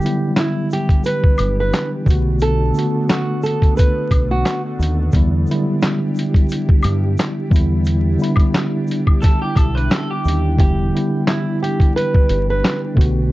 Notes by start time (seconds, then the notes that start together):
Already playing: E3 G3 B3 D4 E4 G4
0.00 D3 F#3, shaker
0.04 B3 E4, closed hi-hat
0.09 G3
0.36 E4, snare, clap, closed hi-hat, shaker
0.70 G4, closed hi-hat, shaker
0.89 kick, closed hi-hat
1.04 B4, closed hi-hat, shaker
1.24 kick
1.38 G1, closed hi-hat, high woodblock, shaker
1.60 B4
1.73 snare, clap, closed hi-hat, shaker
2.05 B1 D3 A3 B3, kick, shaker
2.10 F#4, closed hi-hat
2.40 A4, closed hi-hat, shaker
2.74 D3 A3 B3, shaker
2.78 F#4, closed hi-hat
3.10 F#4, snare, clap, closed hi-hat, shaker
3.42 A4, closed hi-hat, shaker
3.62 kick, closed hi-hat
3.77 B4, kick, closed hi-hat, shaker
4.11 B1, kick, closed hi-hat, high woodblock, shaker
4.31 F#4
4.46 snare, clap, closed hi-hat, shaker
4.79 D#2, closed hi-hat, shaker
5.12 E2 D3 G3 B3 E4 G4, kick, closed hi-hat, shaker
5.16 E4
5.47 D3 F#3 B3, shaker
5.51 G3 E4, closed hi-hat
5.82 snare, clap, closed hi-hat, shaker
6.15 closed hi-hat, shaker
6.34 kick, closed hi-hat
6.49 closed hi-hat, shaker
6.69 kick
6.83 G2, closed hi-hat, high woodblock, shaker
7.18 snare, clap, closed hi-hat, shaker
7.50 E2 D3 G3 B3 D4 G4, kick, shaker
7.54 E4, closed hi-hat
7.85 closed hi-hat, shaker
8.18 D3 G3 B3 E4, shaker
8.24 closed hi-hat
8.36 kick, closed hi-hat, high woodblock
8.55 snare, clap, closed hi-hat, shaker
8.87 closed hi-hat, shaker
9.07 kick, high woodblock
9.22 A4, kick, snare, closed hi-hat, shaker
9.42 G4
9.55 B1 A4, kick, closed hi-hat, high woodblock, shaker
9.75 B4, closed hi-hat
9.91 A4, snare, clap, closed hi-hat, shaker
10.11 G4
10.25 D#2, closed hi-hat, shaker
10.57 E1 D3 E3 G3 B3 D4 G4, kick, closed hi-hat
10.61 E4
10.91 D3 G3 B3
10.95 E4, closed hi-hat
11.27 E4, snare, clap, closed hi-hat
11.63 G4, closed hi-hat
11.80 kick, closed hi-hat
11.96 B4, closed hi-hat
12.15 kick
12.29 G1, closed hi-hat
12.50 B4
12.64 snare, clap, closed hi-hat
12.94 B1 D3 A3 B3 F#4, kick
13.01 closed hi-hat